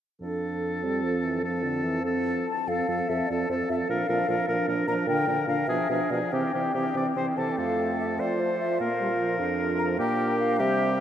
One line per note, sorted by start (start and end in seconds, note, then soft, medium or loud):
0.21 2.43 F2 soft
0.21 0.86 F3 soft
0.21 0.85 D4 soft
0.21 1.40 A4 soft
0.83 1.05 G3 soft
0.83 1.43 C4 soft
1.03 1.25 F3 soft
1.24 1.42 E3 soft
1.43 1.65 F3 soft
1.43 2.03 C4 soft
1.43 2.03 A4 soft
1.63 1.84 D3 soft
1.83 2.04 E3 soft
2.03 2.46 F3 soft
2.03 2.46 C4 soft
2.03 2.47 A4 soft
2.47 2.70 A5 medium
2.67 2.77 F2 soft
2.67 2.88 F3 soft
2.67 2.87 C4 soft
2.67 2.88 A4 soft
2.67 3.10 F5 soft
2.88 2.98 F2 soft
2.88 3.09 F3 soft
2.88 3.08 C4 soft
2.88 3.09 A4 soft
3.08 3.18 F2 soft
3.08 3.29 F3 soft
3.08 3.29 C4 soft
3.08 3.29 A4 soft
3.08 3.29 E5 soft
3.28 3.39 F2 soft
3.28 3.49 F3 soft
3.28 3.48 C4 soft
3.28 3.50 A4 soft
3.28 3.49 D5 soft
3.49 3.58 F2 soft
3.49 3.69 F3 soft
3.49 3.68 C4 soft
3.49 3.70 A4 soft
3.49 3.55 C5 soft
3.69 3.78 F2 soft
3.69 3.88 F3 soft
3.69 3.88 C4 soft
3.69 3.89 A4 soft
3.69 3.75 E5 soft
3.89 3.98 A#2 soft
3.89 4.08 F3 soft
3.89 4.08 D4 soft
3.89 4.08 A#4 soft
3.89 4.66 F5 soft
4.08 4.18 A#2 soft
4.08 4.28 F3 soft
4.08 4.28 D4 soft
4.08 4.28 A#4 soft
4.28 4.37 A#2 soft
4.28 4.48 F3 soft
4.28 4.48 D4 soft
4.28 4.48 A#4 soft
4.48 4.57 A#2 soft
4.48 4.68 F3 soft
4.48 4.68 D4 soft
4.48 4.68 A#4 soft
4.67 4.76 A#2 soft
4.67 4.88 F3 soft
4.67 4.87 D4 soft
4.67 4.87 A#4 soft
4.87 4.96 A#2 medium
4.87 5.08 F3 soft
4.87 5.07 D4 soft
4.87 5.07 A#4 soft
4.87 4.94 A#5 medium
5.07 5.16 A#2 medium
5.07 5.28 D3 soft
5.07 5.27 D4 soft
5.07 5.28 A#4 soft
5.07 5.47 G5 medium
5.27 5.36 A#2 soft
5.27 5.47 D3 soft
5.27 5.47 D4 soft
5.27 5.47 A#4 soft
5.47 5.57 A#2 soft
5.47 5.68 D3 soft
5.47 5.67 D4 soft
5.47 5.68 A#4 soft
5.47 5.69 F5 medium
5.67 5.77 B2 soft
5.67 5.89 F3 soft
5.67 5.89 D4 soft
5.67 5.89 G#4 soft
5.67 6.12 E5 medium
5.89 5.99 B2 soft
5.89 6.11 F3 soft
5.89 6.10 D4 soft
5.89 6.11 G#4 soft
6.10 6.21 B2 soft
6.10 6.33 F3 soft
6.10 6.32 D4 soft
6.10 6.32 G#4 soft
6.10 6.34 D5 soft
6.32 6.42 C3 soft
6.32 6.53 E3 soft
6.32 6.53 C4 soft
6.32 6.53 G4 soft
6.32 7.39 G5 medium
6.53 6.63 C3 soft
6.53 6.74 E3 soft
6.53 6.75 C4 soft
6.53 6.74 G4 soft
6.74 6.84 C3 soft
6.74 6.94 E3 soft
6.74 6.95 C4 soft
6.74 6.95 G4 soft
6.95 7.05 C3 soft
6.95 7.15 E3 soft
6.95 7.16 C4 soft
6.95 7.06 D5 soft
7.15 7.26 C3 soft
7.15 7.35 E3 soft
7.15 7.37 C4 soft
7.15 7.26 C5 soft
7.36 7.47 C3 soft
7.36 7.57 E3 soft
7.36 7.58 C4 soft
7.36 7.57 A4 soft
7.36 7.53 A5 soft
7.52 7.60 G5 soft
7.57 8.15 F2 soft
7.57 8.63 A3 soft
7.57 8.21 C4 soft
7.57 8.21 A4 soft
7.57 7.99 F5 medium
8.00 8.06 E5 soft
8.19 8.79 F3 soft
8.19 9.41 F4 soft
8.19 8.79 C5 soft
8.19 8.41 D5 medium
8.39 8.59 C5 soft
8.60 8.81 E5 soft
8.80 9.38 A#2 soft
8.80 8.89 A#3 soft
8.80 9.96 A#4 soft
8.80 9.59 F5 soft
9.00 9.09 G3 soft
9.19 10.01 F3 soft
9.39 9.97 F2 soft
9.39 10.61 D4 soft
9.79 9.85 A#5 medium
9.99 10.58 A#2 medium
9.99 10.61 A#3 soft
9.99 10.59 G4 soft
9.99 10.38 G5 medium
10.39 10.61 F5 medium
10.59 11.00 C3 medium
10.59 11.00 G3 soft
10.59 11.00 C4 soft
10.59 11.00 G4 soft
10.59 11.00 E5 medium